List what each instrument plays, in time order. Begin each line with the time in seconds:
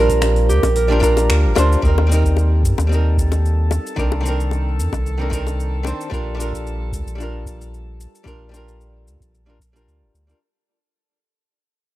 Already playing: sub bass A#1, hollow-body jazz guitar G3 D4 F4, analog synth pad G3 A#3 C4, harp G4 A#4 D5 F5, vibraphone A#4
0.00 hollow-body jazz guitar A#4
0.10 kick, open hi-hat, shaker
0.22 finger snap, open hi-hat, high bongo, shaker
0.36 open hi-hat
0.49 sub bass D2, harp G4, shaker
0.63 sub bass A#1, kick, open hi-hat, high bongo, shaker
0.76 harp A#4, open hi-hat, shaker
0.88 hollow-body jazz guitar G3 D4 F4 A#4
1.00 hollow-body jazz guitar G3 D4 F4 A#4, harp A#5, kick, open hi-hat, shaker
1.17 open hi-hat, high bongo, shaker
1.30 sub bass D2, harp A#4, finger snap, open hi-hat, shaker
1.45 sub bass G1
1.55 sub bass D2, hollow-body jazz guitar G3 D4 F4 C5, harp A#4, open hi-hat, high bongo, shaker
1.72 shaker
1.82 sub bass D#2, hollow-body jazz guitar G3 C4 D#4 A#4, synth texture A4 A5, kick, shaker
1.98 high bongo
2.07 hollow-body jazz guitar G3 C4
2.12 hollow-body jazz guitar D#4 A#4, shaker
2.24 kick, shaker
2.37 high bongo, shaker
2.63 sub bass G2, kick, shaker
2.78 sub bass D#2, high bongo, shaker
2.87 hollow-body jazz guitar G3 C4
2.91 hollow-body jazz guitar D#4 A#4, shaker
3.17 kick, shaker
3.32 high bongo, shaker
3.45 shaker
3.71 high bongo, shaker
3.87 shaker
3.96 sub bass C2, hollow-body jazz guitar D#3 C4 D4 A#4, kick, shaker
4.12 high bongo
4.21 hollow-body jazz guitar D#3 C4
4.25 hollow-body jazz guitar D4 A#4, shaker
4.40 shaker
4.51 high bongo, shaker
4.78 sub bass F2, shaker
4.92 sub bass C2, kick, high bongo, shaker
5.06 shaker
5.18 hollow-body jazz guitar D#3 C4 D4 A#4
5.30 hollow-body jazz guitar D#3 C4 D4 A#4, kick, shaker
5.47 high bongo, shaker
5.60 shaker
5.83 hollow-body jazz guitar D#3 C4 D4 C5, high bongo, shaker
6.01 shaker
6.10 sub bass A#1, hollow-body jazz guitar G3 D4 F4 A#4, kick
6.14 shaker
6.35 hollow-body jazz guitar G3 D4
6.39 hollow-body jazz guitar F4 A#4, shaker
6.53 kick, shaker
6.67 shaker
6.92 sub bass D2, kick, shaker
7.06 sub bass A#1, shaker
7.15 hollow-body jazz guitar G3 D4
7.20 hollow-body jazz guitar F4 A#4, shaker
7.46 kick, shaker
7.61 shaker
7.74 shaker
8.00 shaker
8.15 shaker
8.24 sub bass A#1, hollow-body jazz guitar G3 D4 F4 A#4, kick, shaker
8.49 hollow-body jazz guitar G3 D4
8.54 hollow-body jazz guitar F4 A#4, shaker
8.68 shaker
8.81 shaker
9.07 sub bass D2, shaker
9.20 sub bass A#1, kick, shaker
9.35 shaker
9.46 hollow-body jazz guitar G3 D4 F4 A#4
9.60 kick, shaker
9.73 hollow-body jazz guitar G3 D4 F4 A#4, shaker
9.87 sub bass D2, shaker
10.02 sub bass G1
10.14 sub bass D2, shaker
10.27 hollow-body jazz guitar G3 D4 F4 A#4, shaker